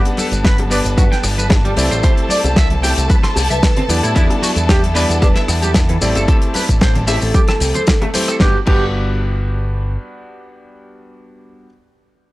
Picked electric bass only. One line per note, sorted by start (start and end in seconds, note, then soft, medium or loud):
0.32 0.80 G1 medium
0.85 0.94 G1 loud
0.98 1.08 G2 medium
1.24 1.73 G1 loud
1.77 1.88 C2 medium
1.91 2.01 A1 medium
2.44 2.92 C2 medium
2.97 3.07 C2 loud
3.36 3.47 C2 loud
3.50 3.60 C2 medium
3.89 4.00 E2 medium
4.03 4.13 A2 medium
4.16 4.27 E2 loud
4.56 5.05 E2 medium
5.09 5.19 E2 loud
5.22 5.33 E1 loud
5.49 5.97 E2 medium
6.01 6.13 A1 medium
6.16 6.25 G1 medium
6.69 7.17 A1 medium
7.22 7.32 A1 medium
7.61 7.72 C2 loud
8.41 8.56 G1 medium
8.67 9.96 G1 medium